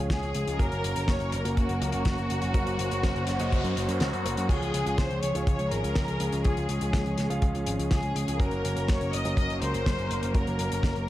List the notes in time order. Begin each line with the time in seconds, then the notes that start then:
Already playing: F3 G#3 C#4 F4 G#4 F5
0.10 G#4, kick, snare, closed hi-hat
0.23 C#2, closed hi-hat
0.35 C#2, closed hi-hat
0.47 C#2, closed hi-hat
0.59 F#1 F#3 A#3 C#4 F#4 A#4, kick, closed hi-hat
0.72 F#1, closed hi-hat
0.84 F#1, closed hi-hat
0.96 F#1, closed hi-hat
1.08 F#1 C#5, kick, snare, closed hi-hat
1.20 F#1, closed hi-hat
1.32 F#1 A#4, closed hi-hat
1.45 F#1 A#3 C#4 F#4 A#4, closed hi-hat
1.57 F#1 F#4, kick, closed hi-hat
1.69 F#1, closed hi-hat
1.81 C#2, closed hi-hat
1.92 F#1, closed hi-hat
2.05 F#1, kick, snare, closed hi-hat
2.18 F#1, closed hi-hat
2.30 F#1, closed hi-hat
2.42 F#1, closed hi-hat
2.54 F#1 A#3 C#4 F#4 A#4 C5, kick, closed hi-hat, noise sweep
2.67 F#1, closed hi-hat
2.79 F#1, closed hi-hat
2.91 F#1, closed hi-hat
3.03 F#1, kick, snare, closed hi-hat
3.15 F#1, closed hi-hat
3.27 F#1, snare, closed hi-hat
3.39 F#1 A#3 C#4 F#4 D#5, closed hi-hat
3.52 F#1, kick, closed hi-hat
3.64 F#2, closed hi-hat
3.76 F#1, closed hi-hat
3.88 F#2, closed hi-hat
4.00 C#2 F#4, snare, closed hi-hat
4.13 F#2, closed hi-hat
4.25 F#1 A#3 C#4 F#4 A#4, closed hi-hat
4.37 F#2, closed hi-hat
4.49 C#2 F3 G#3 C#4 F4 G#4 C#5, kick, closed hi-hat, crash
4.62 C#2, closed hi-hat
4.74 C#2, closed hi-hat
4.86 C#2, closed hi-hat
4.98 C#2 C5, kick, snare, closed hi-hat
5.10 C#2, closed hi-hat
5.23 C#2 C#5, closed hi-hat
5.35 C#2 C#4 F4 G#4 C#5, closed hi-hat
5.47 C#2 C#5, kick, closed hi-hat
5.59 C#2, closed hi-hat
5.71 G#1 A#4, closed hi-hat
5.84 C#2, closed hi-hat
5.95 C#2, kick, snare, closed hi-hat
6.08 C#2, closed hi-hat
6.20 C#2, closed hi-hat
6.32 C#2, closed hi-hat
6.44 C#2 C#4 F4 G#4 C#5, kick, closed hi-hat
6.57 C#2, closed hi-hat
6.69 C#2, closed hi-hat
6.81 C#2, closed hi-hat
6.93 C#2, kick, snare, closed hi-hat
7.06 C#2, closed hi-hat
7.18 C#2, snare, closed hi-hat
7.30 C#2 C#4 F4 G#4 F5, closed hi-hat
7.42 C#2, kick, closed hi-hat
7.55 C#2, closed hi-hat
7.66 G#1, closed hi-hat
7.79 C#2, closed hi-hat
7.91 C#2 G#4, kick, snare, closed hi-hat
8.03 C#2, closed hi-hat
8.15 C#2, closed hi-hat
8.28 C#2, closed hi-hat
8.40 F#1 F#3 A#3 C#4 F#4 A#4, kick, closed hi-hat
8.51 F#1, closed hi-hat
8.64 F#1, closed hi-hat
8.76 F#1, closed hi-hat
8.88 F#1 C#5, kick, snare, closed hi-hat
9.01 F#1, closed hi-hat
9.13 F#1 D#5, closed hi-hat
9.25 F#1 A#3 C#4 F#4 A#4, closed hi-hat
9.37 F#1 D#5, kick, closed hi-hat
9.50 F#1, closed hi-hat
9.62 C#2 C5, closed hi-hat
9.74 F#1, closed hi-hat
9.86 F#1, kick, snare, closed hi-hat
9.98 F#1, closed hi-hat
10.11 F#1, closed hi-hat
10.23 F#1, closed hi-hat
10.35 F#1 A#3 C#4 F#4 A#4, kick, closed hi-hat
10.47 F#1, closed hi-hat
10.59 F#1, closed hi-hat
10.71 F#1, closed hi-hat
10.83 F#1, kick, snare, closed hi-hat
10.96 F#1, closed hi-hat